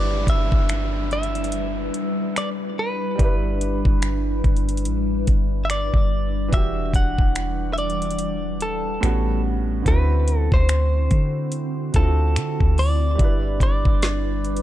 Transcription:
0.00 0.26 G1 loud
0.00 3.13 G3 medium
0.00 6.49 G3 medium
0.00 3.15 D4 medium
0.00 8.99 D4 medium
0.00 3.16 E4 medium
0.00 6.49 E4 medium
0.00 3.18 B4 medium
0.00 6.49 B4 medium
0.00 0.29 D5 loud
0.00 downlifter medium
0.27 0.51 G1 loud
0.27 1.12 E5 loud
0.27 kick loud
0.27 closed hi-hat medium
0.52 1.91 G1 loud
0.52 kick loud
0.69 finger snap loud
0.69 closed hi-hat medium
1.11 2.37 E5 loud
1.11 closed hi-hat soft
1.23 closed hi-hat soft
1.35 closed hi-hat soft
1.44 closed hi-hat medium
1.52 closed hi-hat medium
1.94 closed hi-hat medium
2.36 2.49 D5 loud
2.36 finger snap loud
2.36 closed hi-hat medium
2.79 4.41 B4 medium
3.15 6.47 G3 medium
3.15 6.48 D4 medium
3.15 kick loud
3.19 3.83 G1 loud
3.19 6.50 E4 medium
3.19 closed hi-hat medium
3.24 6.51 B4 medium
3.61 closed hi-hat medium
3.85 4.42 G1 loud
3.85 kick loud
4.02 finger snap loud
4.02 closed hi-hat medium
4.44 4.88 G1 loud
4.44 kick medium
4.44 closed hi-hat soft
4.57 closed hi-hat soft
4.69 closed hi-hat soft
4.77 closed hi-hat medium
4.85 5.26 A1 loud
4.85 closed hi-hat medium
5.27 5.91 G1 loud
5.27 kick medium
5.27 closed hi-hat medium
5.65 5.70 E5 medium
5.70 6.49 D5 loud
5.70 finger snap loud
5.70 closed hi-hat medium
5.94 6.50 G1 loud
5.94 kick medium
6.48 8.97 E3 medium
6.48 8.98 D4 medium
6.53 6.93 E1 loud
6.53 9.00 E3 medium
6.53 9.83 G3 medium
6.53 8.99 F#4 medium
6.53 6.95 E5 loud
6.53 9.00 F#5 medium
6.53 kick loud
6.53 closed hi-hat medium
6.57 9.01 G4 medium
6.94 7.17 E1 loud
6.94 7.73 F#5 loud
6.94 kick loud
6.94 closed hi-hat medium
7.19 8.99 E1 loud
7.19 kick loud
7.35 finger snap loud
7.35 closed hi-hat medium
7.73 7.78 E5 medium
7.78 8.64 D5 loud
7.78 closed hi-hat soft
7.90 closed hi-hat soft
8.02 closed hi-hat soft
8.11 closed hi-hat medium
8.19 closed hi-hat medium
8.61 9.41 A4 medium
8.61 closed hi-hat medium
9.01 9.83 A1 loud
9.01 9.85 A2 medium
9.01 9.86 G3 medium
9.01 9.86 B3 medium
9.01 9.87 C#4 medium
9.01 finger snap loud
9.01 closed hi-hat medium
9.05 9.87 F#4 medium
9.82 10.49 D2 loud
9.82 11.88 D3 medium
9.82 13.16 D3 medium
9.82 11.90 C4 medium
9.82 13.16 C4 medium
9.82 14.62 E4 medium
9.82 13.16 F#4 medium
9.82 kick loud
9.82 closed hi-hat medium
9.88 11.91 E4 medium
9.88 11.93 F#4 medium
9.88 10.39 B4 loud
10.28 closed hi-hat medium
10.39 10.53 A4 loud
10.52 11.09 D2 loud
10.52 11.96 C5 medium
10.52 kick loud
10.69 finger snap loud
10.69 closed hi-hat medium
11.11 11.91 D3 loud
11.11 kick medium
11.11 closed hi-hat medium
11.52 closed hi-hat medium
11.92 12.38 D2 loud
11.92 13.18 D3 medium
11.92 13.19 C4 soft
11.92 13.19 E4 soft
11.92 12.81 A4 medium
11.92 kick loud
11.92 closed hi-hat medium
11.97 12.03 F4 soft
12.03 13.24 F#4 medium
12.36 12.59 D3 loud
12.36 finger snap loud
12.36 closed hi-hat medium
12.60 13.17 D2 medium
12.60 kick medium
12.78 13.62 D5 loud
12.78 open hi-hat medium
13.15 14.62 G3 medium
13.15 14.62 D4 medium
13.15 14.62 B4 medium
13.19 13.59 G1 loud
13.19 14.62 G3 medium
13.19 14.62 E4 medium
13.19 kick loud
13.19 closed hi-hat medium
13.24 14.62 B4 medium
13.60 13.84 G1 loud
13.60 14.62 D5 medium
13.60 kick loud
13.60 closed hi-hat medium
13.85 14.62 G1 loud
13.85 kick loud
14.02 snare loud
14.02 closed hi-hat medium
14.44 closed hi-hat soft
14.57 closed hi-hat soft

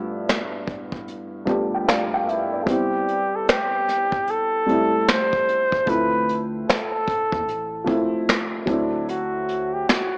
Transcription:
0.00 0.62 G2 medium
0.00 0.62 F3 medium
0.00 0.62 A3 medium
0.00 0.63 B3 medium
0.00 0.63 D4 medium
0.00 0.63 E4 medium
0.00 2.69 F#4 medium
0.29 finger snap medium
0.29 snare loud
0.29 closed hi-hat medium
0.68 kick medium
0.68 closed hi-hat medium
0.92 kick medium
1.08 closed hi-hat medium
1.46 2.32 G2 medium
1.46 2.32 F3 medium
1.46 2.33 A3 medium
1.46 2.33 B3 medium
1.46 2.33 D4 medium
1.46 2.34 G4 medium
1.46 1.71 A5 medium
1.46 kick medium
1.46 closed hi-hat soft
1.75 1.87 G5 medium
1.88 2.12 D5 medium
1.88 2.11 F5 medium
1.88 finger snap medium
1.88 snare loud
1.88 closed hi-hat medium
2.14 2.27 F5 medium
2.14 2.27 G5 medium
2.27 2.65 E4 medium
2.27 2.65 E5 medium
2.27 closed hi-hat medium
2.53 2.91 D5 medium
2.63 3.81 G3 medium
2.63 3.82 B3 medium
2.63 2.71 A4 medium
2.63 kick loud
2.68 3.82 C4 medium
2.68 3.83 E4 medium
2.68 3.37 G4 medium
2.68 closed hi-hat medium
3.08 closed hi-hat medium
3.36 3.49 A4 medium
3.49 4.32 G4 loud
3.49 finger snap medium
3.49 snare loud
3.49 closed hi-hat medium
3.89 snare soft
3.89 closed hi-hat medium
4.12 kick loud
4.27 5.09 A4 loud
4.27 closed hi-hat medium
4.66 5.52 G3 medium
4.66 5.53 A3 medium
4.66 5.54 C4 medium
4.66 closed hi-hat medium
4.70 5.54 E4 medium
5.08 5.91 C5 loud
5.08 finger snap medium
5.08 snare loud
5.08 closed hi-hat medium
5.33 kick medium
5.49 closed hi-hat medium
5.72 kick medium
5.86 6.63 D2 loud
5.86 7.01 F3 medium
5.86 7.02 A3 medium
5.86 7.02 C4 medium
5.86 7.03 E4 medium
5.86 6.45 B4 loud
5.86 kick loud
5.86 closed hi-hat medium
6.29 closed hi-hat medium
6.69 8.24 A4 loud
6.69 finger snap medium
6.69 snare loud
6.69 closed hi-hat medium
7.08 kick loud
7.08 closed hi-hat medium
7.32 7.48 E2 loud
7.32 kick loud
7.48 7.85 A1 loud
7.48 closed hi-hat medium
7.84 8.66 F3 medium
7.84 8.65 A3 medium
7.84 8.67 C4 medium
7.84 8.68 E4 loud
7.84 kick medium
7.89 closed hi-hat medium
8.29 finger snap medium
8.29 snare loud
8.29 closed hi-hat medium
8.66 9.83 D2 medium
8.66 9.97 F#3 medium
8.66 9.97 A3 medium
8.66 9.98 C4 medium
8.66 9.11 D4 medium
8.66 9.99 E4 medium
8.66 kick loud
8.66 closed hi-hat medium
9.09 9.75 F#4 medium
9.09 closed hi-hat medium
9.48 closed hi-hat medium
9.74 9.90 G4 medium
9.89 10.18 F#4 medium
9.89 finger snap medium
9.89 snare loud
9.89 closed hi-hat medium

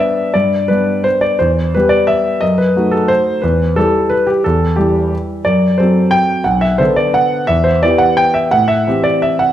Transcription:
0.00 0.31 G3 soft
0.00 0.31 B3 soft
0.00 0.31 D4 soft
0.00 0.34 E5 medium
0.34 0.69 G2 soft
0.34 0.69 D5 medium
0.68 1.36 G3 soft
0.68 1.36 B3 soft
0.68 1.36 D4 soft
0.68 1.05 B4 medium
1.04 1.22 C5 medium
1.21 1.39 D5 medium
1.39 1.74 E2 medium
1.39 1.74 C5 medium
1.75 2.40 G3 soft
1.75 2.40 B3 soft
1.75 2.41 G4 soft
1.75 1.92 B4 medium
1.89 2.08 D5 medium
2.07 2.42 E5 medium
2.41 2.75 F#2 soft
2.41 2.58 D#5 medium
2.58 2.92 B4 medium
2.76 3.39 A3 soft
2.76 3.39 D#4 soft
2.76 3.39 F#4 soft
2.91 3.09 A4 medium
3.08 3.42 C5 medium
3.42 3.76 E2 medium
3.42 3.76 B4 medium
3.76 4.42 G3 soft
3.76 4.42 E4 soft
3.76 4.25 G4 soft
3.76 4.11 A4 medium
4.10 4.28 B4 medium
4.27 4.45 G4 medium
4.44 4.78 E2 medium
4.44 4.78 A4 medium
4.76 5.42 G3 soft
4.76 5.43 E4 soft
4.76 5.11 G4 medium
5.45 5.78 F#2 medium
5.45 5.79 D5 medium
5.78 6.42 F#3 soft
5.78 6.42 C4 soft
5.78 6.43 A4 soft
5.78 6.12 C5 medium
6.11 6.45 G5 medium
6.44 6.79 B1 medium
6.44 6.62 F#5 medium
6.61 6.79 E5 medium
6.78 7.44 D3 soft
6.78 7.45 B3 soft
6.78 7.45 A4 soft
6.78 6.97 C5 medium
6.96 7.14 D5 medium
7.14 7.48 F#5 medium
7.47 7.82 E2 medium
7.47 7.65 E5 medium
7.64 7.82 C5 medium
7.83 8.49 E3 soft
7.83 8.49 B3 soft
7.83 8.49 G4 soft
7.83 8.00 D5 medium
7.98 8.17 F#5 medium
8.17 8.35 G5 medium
8.34 8.52 E5 medium
8.51 8.86 A2 medium
8.51 8.69 F#5 medium
8.68 9.04 E5 medium
8.87 9.53 E3 soft
8.87 9.53 C4 soft
8.87 9.53 G4 soft
9.04 9.22 D5 medium
9.22 9.40 E5 medium
9.39 9.53 F#5 medium

